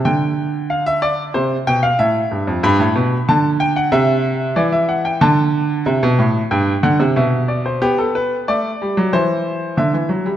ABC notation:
X:1
M:4/4
L:1/16
Q:1/4=93
K:Gmix
V:1 name="Grand piano"
g4 f e d2 c2 g f e4 | b4 a2 g ^f e4 d e f g | a8 g2 ^f2 e2 d c | [K:G] G A B2 d4 c4 e4 |]
V:2 name="Grand piano" clef=bass
D,8 C,2 B,,2 A,,2 G,, F,, | G,, A,, B,,2 D,4 C,4 E,4 | D,4 C, B,, A,,2 G,,2 D, C, B,,4 | [K:G] B,4 A,2 G, F, E,4 D, E, F, G, |]